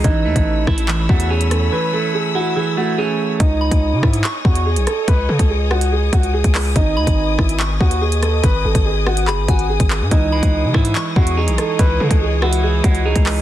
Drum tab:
HH |x--x---x---x-xx-|----------------|x--x---x---x-xx-|x--x---x--xx-xo-|
CP |--------x-------|----------------|--------x-------|--------------x-|
SD |------r-------r-|----------------|------r-------r-|------r-------r-|
BD |o--o--o---o-----|----------------|o--o--o---o-----|o--o------o--o--|

HH |x--x---x---x-xx-|x--x---x--xx-x--|x--x---x---x-xx-|x--x---x--xx-xo-|
CP |--------x-------|--------x-----x-|--------x-------|--------------x-|
SD |------r-------r-|------r-------r-|------r-------r-|------r-------r-|
BD |o--o--o---o-----|o--o------o--o--|o--o--o---o-----|o--o------o--o--|